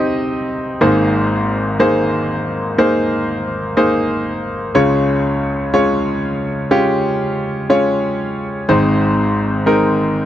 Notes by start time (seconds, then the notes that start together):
Already playing: C2 C3 C4 D#4 G4 D#5
0.81 G#1 G#2 A#3 D#4 G#4 C5
1.79 A#3 D#4 G#4 C5
2.78 A#3 D#4 G#4 C5
3.77 A#3 D#4 G#4 C5
4.75 C#2 C#3 G#3 C#4 F4 C#5
5.74 G#3 C#4 F4 C#5
6.71 G#3 C#4 F4 G4
7.70 G#3 C#4 F4 C#5
8.69 G#1 G#2 G#3 C4 D#4 C5
9.66 G#3 C4 D#4 A#4